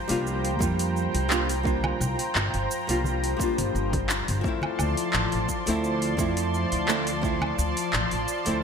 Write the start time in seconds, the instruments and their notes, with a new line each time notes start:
Already playing: analog synth pad F3 C5 G5 A#5
0.08 upright bass C2, nylon-string guitar G3 A#3 D4 F4, open hi-hat, cabasa
0.27 cabasa
0.45 open hi-hat
0.59 upright bass F2, nylon-string guitar G3 A#3 D4 F4, kick, high conga, cabasa
0.79 open hi-hat, cabasa
0.97 cabasa
1.15 upright bass C2, open hi-hat
1.29 nylon-string guitar G3 A#3 D4 F4, clap, cabasa
1.49 open hi-hat, cabasa
1.63 nylon-string guitar G3 A#3 D4 F4, kick, cabasa
1.84 high conga, low woodblock
2.00 upright bass C2, cabasa
2.19 open hi-hat, cabasa
2.35 upright bass G1, clap, cabasa
2.54 upright bass G1, open hi-hat
2.71 cabasa
2.87 upright bass C2, nylon-string guitar G3 A#3 D4 F4, open hi-hat, cabasa
3.04 high conga, cabasa
3.24 open hi-hat
3.37 nylon-string guitar G3 A#3, kick
3.41 nylon-string guitar D4 F4, cabasa
3.58 upright bass G1, open hi-hat, high conga, cabasa
3.75 upright bass G1, cabasa
3.93 kick, open hi-hat, high conga
4.09 clap, cabasa
4.28 upright bass G1, open hi-hat, cabasa
4.41 nylon-string guitar F3 A3, analog synth pad D5 A5 C6, kick
4.45 nylon-string guitar C4 E4, cabasa
4.62 high conga, low woodblock
4.79 upright bass D2, cabasa, low woodblock
4.97 open hi-hat, cabasa
5.13 upright bass A1, clap, cabasa
5.32 upright bass A1, open hi-hat
5.49 kick, cabasa
5.66 upright bass D2, nylon-string guitar F3 A3 C4 E4, open hi-hat, cabasa
5.84 cabasa
6.02 open hi-hat
6.17 upright bass F2, nylon-string guitar F3 A3 C4 E4, kick, high conga, cabasa
6.37 open hi-hat, cabasa
6.54 cabasa
6.72 upright bass D2, open hi-hat
6.87 nylon-string guitar F3 A3 C4 E4, clap, cabasa
7.07 open hi-hat, cabasa
7.22 nylon-string guitar F3 A3 C4 E4, kick, cabasa
7.42 high conga, low woodblock
7.58 upright bass D2, cabasa
7.77 open hi-hat, cabasa
7.93 upright bass A1, clap, cabasa
8.11 upright bass A1, open hi-hat
8.28 cabasa
8.45 upright bass D2, nylon-string guitar F3 A3 C4 E4, open hi-hat, cabasa